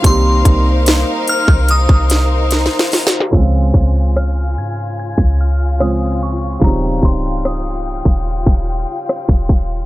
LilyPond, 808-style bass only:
\new Staff \with { instrumentName = "808-style bass" } { \clef bass \time 4/4 \key des \lydian \tempo 4 = 73 c,8 c,8. r8 c,8 c,4 r8. | des,8 des,4 aes,8. des,4.~ des,16 | ees,,8 des,,4~ des,,16 ees,,8 ees,,8 r8 ees,,8. | }